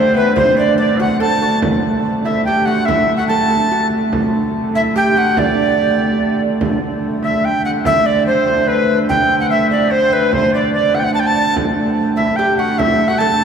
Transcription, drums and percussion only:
0.36 frame drum medium
0.57 frame drum soft
0.78 frame drum soft
0.99 frame drum medium
1.20 frame drum soft
1.62 frame drum medium
2.05 frame drum soft
2.25 frame drum medium
2.46 frame drum soft
2.88 frame drum medium
3.31 frame drum soft
3.51 frame drum medium
3.71 frame drum soft
4.13 frame drum medium
4.55 frame drum soft
4.96 frame drum soft
5.37 frame drum medium
5.78 frame drum soft
5.99 frame drum medium
6.19 frame drum soft
6.61 frame drum medium
7.02 frame drum soft
7.23 frame drum medium
7.43 frame drum soft
7.85 frame drum medium
8.27 frame drum soft
8.47 frame drum medium
8.69 frame drum soft
9.10 frame drum medium
9.51 frame drum soft
9.71 frame drum medium
9.91 frame drum soft
10.33 frame drum medium
10.74 frame drum soft
10.94 frame drum medium
11.56 frame drum medium
11.98 frame drum soft
12.19 frame drum medium
12.39 frame drum soft
12.80 frame drum medium
13.20 frame drum soft
13.40 frame drum medium

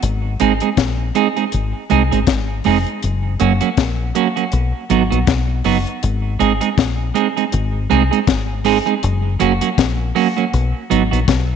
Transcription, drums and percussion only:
0.03 closed hi-hat loud
0.40 closed hi-hat medium
0.60 closed hi-hat medium
0.77 kick loud
0.77 snare loud
0.77 closed hi-hat medium
1.15 closed hi-hat medium
1.37 closed hi-hat soft
1.52 closed hi-hat medium
1.90 closed hi-hat medium
2.12 closed hi-hat medium
2.27 kick loud
2.27 snare loud
2.27 closed hi-hat medium
2.64 open hi-hat medium
2.86 closed hi-hat soft
3.03 closed hi-hat medium
3.40 closed hi-hat medium
3.61 closed hi-hat medium
3.77 kick loud
3.77 snare loud
3.77 closed hi-hat medium
4.15 closed hi-hat medium
4.37 closed hi-hat soft
4.52 closed hi-hat medium
4.90 closed hi-hat medium
5.12 closed hi-hat medium
5.27 kick loud
5.27 snare loud
5.27 closed hi-hat medium
5.64 open hi-hat medium
5.87 closed hi-hat soft
6.03 closed hi-hat loud
6.40 closed hi-hat medium
6.61 closed hi-hat medium
6.78 kick loud
6.78 snare loud
6.78 closed hi-hat medium
7.15 closed hi-hat medium
7.37 closed hi-hat soft
7.52 closed hi-hat medium
7.91 closed hi-hat medium
8.13 closed hi-hat medium
8.27 kick loud
8.27 snare loud
8.27 closed hi-hat medium
8.65 open hi-hat medium
8.87 closed hi-hat soft
9.03 closed hi-hat medium
9.40 closed hi-hat medium
9.61 closed hi-hat medium
9.78 kick loud
9.78 snare loud
9.78 closed hi-hat medium
10.16 open hi-hat soft
10.38 closed hi-hat soft
10.54 closed hi-hat medium
10.91 closed hi-hat medium
11.13 closed hi-hat medium
11.28 kick loud
11.28 snare loud
11.28 closed hi-hat medium

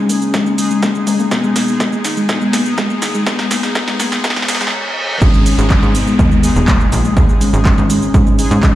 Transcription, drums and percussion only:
0.09 open hi-hat medium
0.09 shaker medium
0.22 shaker soft
0.34 kick loud
0.34 snare medium
0.34 shaker soft
0.46 shaker soft
0.58 open hi-hat loud
0.58 shaker medium
0.71 shaker soft
0.83 kick loud
0.83 snare medium
0.83 shaker soft
0.95 shaker soft
1.07 open hi-hat medium
1.07 mid tom medium
1.07 shaker medium
1.19 shaker soft
1.31 kick loud
1.31 snare medium
1.31 shaker soft
1.44 shaker soft
1.56 snare medium
1.56 open hi-hat loud
1.56 shaker medium
1.68 shaker soft
1.80 kick loud
1.80 snare medium
1.80 mid tom medium
1.80 shaker soft
1.93 shaker soft
2.05 snare medium
2.05 open hi-hat medium
2.05 shaker medium
2.17 shaker soft
2.29 kick loud
2.29 snare medium
2.29 mid tom medium
2.29 shaker soft
2.41 shaker soft
2.53 snare medium
2.53 open hi-hat loud
2.53 shaker medium
2.66 shaker soft
2.78 kick loud
2.78 snare medium
2.78 shaker soft
2.90 shaker soft
3.02 snare medium
3.02 open hi-hat medium
3.02 shaker medium
3.14 shaker soft
3.27 kick loud
3.27 snare medium
3.27 shaker soft
3.39 snare medium
3.39 shaker soft
3.51 snare medium
3.51 open hi-hat loud
3.51 shaker medium
3.63 snare medium
3.63 shaker soft
3.75 kick loud
3.75 snare medium
3.75 mid tom medium
3.75 shaker soft
3.88 snare medium
3.88 shaker soft
4.00 snare loud
4.00 open hi-hat loud
4.00 shaker medium
4.12 snare medium
4.12 shaker soft
4.24 kick loud
4.24 snare loud
4.24 shaker soft
4.30 snare medium
4.36 snare medium
4.36 shaker soft
4.42 snare medium
4.48 snare loud
4.48 open hi-hat loud
4.48 shaker medium
4.55 snare medium
4.61 snare medium
4.61 shaker soft
4.67 snare medium
5.22 kick loud
5.22 shaker soft
5.34 shaker soft
5.46 open hi-hat loud
5.46 shaker medium
5.58 shaker soft
5.70 kick loud
5.70 clap loud
5.70 mid tom medium
5.70 shaker soft
5.83 shaker soft
5.95 open hi-hat medium
5.95 shaker medium
6.07 shaker soft
6.19 kick loud
6.19 mid tom medium
6.19 shaker soft
6.32 shaker soft
6.43 open hi-hat loud
6.43 shaker medium
6.56 shaker soft
6.68 kick loud
6.68 clap loud
6.68 shaker soft
6.80 shaker soft
6.92 open hi-hat medium
6.92 shaker medium
7.05 shaker soft
7.17 kick loud
7.17 shaker soft
7.29 shaker soft
7.41 open hi-hat loud
7.41 shaker medium
7.53 shaker soft
7.65 kick loud
7.65 clap loud
7.65 mid tom medium
7.65 shaker soft
7.78 shaker soft
7.90 open hi-hat loud
7.90 shaker medium
8.02 shaker soft
8.14 kick loud
8.14 shaker soft
8.27 shaker soft
8.39 open hi-hat loud
8.39 shaker medium
8.51 shaker soft
8.63 kick loud
8.63 clap loud
8.63 shaker soft

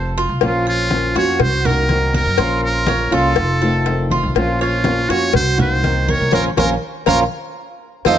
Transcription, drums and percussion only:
0.41 cowbell loud
0.41 high conga soft
0.66 high conga soft
0.91 cowbell medium
0.91 high conga medium
1.15 cowbell medium
1.40 cowbell loud
1.40 high conga soft
1.40 low conga medium
1.65 high conga soft
1.65 low conga medium
1.89 cowbell medium
1.89 high conga medium
2.14 high conga medium
2.38 cowbell loud
2.38 high conga soft
2.63 high conga soft
2.86 cowbell medium
2.86 high conga loud
3.36 cowbell loud
3.36 high conga soft
3.61 high conga soft
3.86 cowbell medium
3.86 high conga soft
4.10 high conga medium
4.35 cowbell loud
4.35 high conga soft
4.60 high conga soft
4.84 cowbell medium
4.84 high conga loud
5.10 cowbell medium
5.33 cowbell loud
5.33 high conga soft
5.33 low conga medium
5.59 high conga soft
5.59 low conga medium
5.83 cowbell medium
5.83 high conga medium
6.08 high conga medium
6.32 cowbell medium
6.32 high conga loud
6.57 cowbell loud
6.57 high conga loud
7.06 cowbell loud
7.06 high conga loud
8.05 cowbell loud
8.05 high conga loud

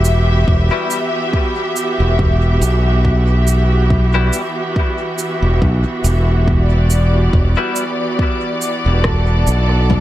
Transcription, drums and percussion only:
0.05 cabasa soft
0.48 kick loud
0.90 cabasa soft
1.33 kick medium
1.76 cabasa soft
2.19 kick loud
2.62 cabasa soft
3.05 kick loud
3.47 cabasa soft
3.90 kick loud
4.33 cabasa soft
4.76 kick loud
5.18 cabasa soft
5.62 kick loud
6.04 cabasa soft
6.48 kick medium
6.90 cabasa soft
7.33 kick medium
7.76 cabasa soft
8.19 kick medium
8.62 cabasa soft
9.04 kick medium
9.04 cross-stick medium
9.47 cabasa soft
9.90 kick loud
9.90 low conga medium

